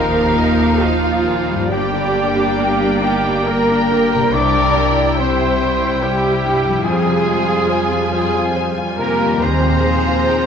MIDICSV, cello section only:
0, 0, Header, 1, 2, 480
1, 0, Start_track
1, 0, Key_signature, -3, "major"
1, 0, Tempo, 887574
1, 925, Time_signature, 3, 2, 24, 8
1, 1877, Tempo, 847458
1, 4277, Tempo, 862069
1, 5810, End_track
2, 0, Start_track
2, 0, Title_t, "Cello section"
2, 0, Program_c, 0, 48
2, 0, Note_on_c, 0, 70, 91
2, 443, Note_off_c, 0, 70, 0
2, 446, Note_on_c, 0, 65, 98
2, 926, Note_off_c, 0, 65, 0
2, 928, Note_on_c, 0, 67, 100
2, 1626, Note_off_c, 0, 67, 0
2, 1638, Note_on_c, 0, 67, 94
2, 1871, Note_off_c, 0, 67, 0
2, 1877, Note_on_c, 0, 70, 96
2, 2363, Note_off_c, 0, 70, 0
2, 2364, Note_on_c, 0, 74, 98
2, 2846, Note_on_c, 0, 72, 90
2, 2848, Note_off_c, 0, 74, 0
2, 3325, Note_off_c, 0, 72, 0
2, 3325, Note_on_c, 0, 67, 90
2, 3796, Note_off_c, 0, 67, 0
2, 3797, Note_on_c, 0, 68, 100
2, 4499, Note_off_c, 0, 68, 0
2, 4517, Note_on_c, 0, 68, 89
2, 4749, Note_off_c, 0, 68, 0
2, 4996, Note_on_c, 0, 70, 99
2, 5220, Note_off_c, 0, 70, 0
2, 5239, Note_on_c, 0, 72, 96
2, 5810, Note_off_c, 0, 72, 0
2, 5810, End_track
0, 0, End_of_file